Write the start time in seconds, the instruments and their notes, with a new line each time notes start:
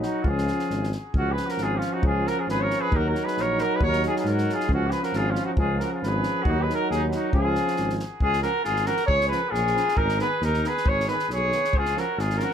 Already playing: trombone F#3, euphonium D#4
0.03 trumpet D#4, flugelhorn F#4, snare
0.23 tuba C#2, trombone F3, euphonium C#4, trumpet F4, kick
0.28 flugelhorn G#4
0.38 snare
0.48 snare
0.59 snare
0.69 tuba G#1, snare
0.84 snare
0.92 snare
1.14 tuba C#2, trombone F3, euphonium C#4, trumpet C#4, kick
1.18 flugelhorn F#4
1.31 trumpet G#4, flugelhorn B4
1.37 snare
1.46 trumpet F#4, flugelhorn A#4, snare
1.57 tuba G#1, snare
1.62 trumpet F4, flugelhorn G#4
1.76 trumpet C#4, flugelhorn F4
1.81 snare
1.92 trumpet D#4, flugelhorn F#4
2.03 tuba C#2, flugelhorn G#4, kick
2.07 trumpet F4
2.27 trumpet F#4, flugelhorn A#4, snare
2.39 trumpet F4, flugelhorn G#4
2.47 tuba G#1, trumpet G#4, flugelhorn B4, snare
2.61 trumpet A#4, flugelhorn C#5
2.71 snare
2.80 trumpet G#4, flugelhorn B4
2.91 tuba D#2, trombone F#3, euphonium D#4, kick
2.95 trumpet F#4, flugelhorn A#4
3.08 trumpet F#4, flugelhorn A#4
3.15 snare
3.24 trumpet G#4, flugelhorn B4, snare
3.37 tuba A#1, trumpet A#4, flugelhorn C#5, snare
3.58 flugelhorn A#4, snare
3.64 trumpet F#4
3.75 trumpet G#4, flugelhorn B4
3.81 tuba D#2, flugelhorn C#5, kick
3.88 trumpet A#4
3.93 snare
4.03 snare
4.07 trumpet F4, flugelhorn G#4
4.16 trumpet F4, flugelhorn G#4, snare
4.24 tuba G#2, flugelhorn A#4, snare
4.32 trumpet F#4
4.38 snare
4.49 trumpet F4, snare
4.54 flugelhorn G#4
4.60 snare
4.68 tuba C#2, trombone F3, euphonium C#4, kick
4.73 trumpet C#4, flugelhorn F#4
4.87 trumpet G#4, flugelhorn B4, snare
5.02 trumpet F#4, flugelhorn A#4, snare
5.13 tuba G#1, trumpet F4, snare
5.17 flugelhorn G#4
5.30 trumpet C#4, flugelhorn F4
5.35 snare
5.45 trumpet D#4, flugelhorn F#4
5.57 tuba C#2, trumpet F4, flugelhorn G#4, kick
5.79 flugelhorn A#4, snare
5.84 trumpet F#4
5.92 trumpet F4, flugelhorn G#4
6.01 tuba G#1, flugelhorn B4, snare
6.08 trumpet G#4
6.23 snare
6.42 tuba D#2, trombone F#3, euphonium D#4, flugelhorn F#4, kick
6.50 trumpet D#4
6.61 trumpet G#4, flugelhorn B4
6.70 flugelhorn A#4, snare
6.79 trumpet F#4
6.90 tuba D#2, flugelhorn G#4, snare
6.96 trumpet D#4
7.12 trumpet D#4, flugelhorn F#4, snare
7.32 tuba C#2, trombone F3, euphonium C#4, flugelhorn G#4, kick
7.38 trumpet F4
7.55 snare
7.68 snare
7.76 tuba G#1, snare
7.90 snare
8.00 snare
8.20 tuba C#2, trumpet F4, flugelhorn G#4, kick
8.33 snare
8.42 trombone F3, euphonium C#4, trumpet F#4, flugelhorn A#4, snare
8.63 tuba G#1, trumpet F4, flugelhorn G#4, snare
8.76 snare
8.83 euphonium C#4, trumpet F#4, flugelhorn A#4, snare
8.88 trombone F3
8.97 snare
9.06 tuba C#2, trumpet G#4, flugelhorn C#5, kick
9.21 snare
9.28 trombone F3, euphonium C#4, trumpet G#4, flugelhorn B4
9.32 snare
9.49 tuba A#1, trumpet F4, flugelhorn G#4
9.55 snare
9.67 snare
9.73 trombone F3, euphonium C#4, snare
9.89 snare
9.96 tuba G#1, trumpet D#4, flugelhorn A#4, kick
10.09 snare
10.18 trombone D#3, euphonium B3, trumpet G#4, flugelhorn B4, snare
10.41 tuba D#2, trumpet D#4, flugelhorn A#4, snare
10.54 snare
10.61 trombone D#3, euphonium B3, snare
10.67 trumpet G#4, flugelhorn B4
10.77 snare
10.84 tuba G#1, flugelhorn C#5, kick
10.89 trumpet G#4
11.00 snare
11.07 trombone D#3, euphonium B3, flugelhorn B4, snare
11.12 trumpet G#4
11.19 snare
11.29 tuba B1, trumpet G#4, snare
11.33 flugelhorn C#5
11.50 trombone D#3, euphonium B3, snare
11.64 snare
11.72 tuba C#2, kick
11.77 trumpet F4, flugelhorn G#4
11.86 snare
11.95 trombone F3, euphonium C#4, trumpet F#4, flugelhorn A#4, snare
12.17 tuba G#1, trumpet F4, flugelhorn G#4, snare
12.30 snare
12.37 trombone F3, euphonium C#4, flugelhorn A#4, snare
12.43 trumpet F#4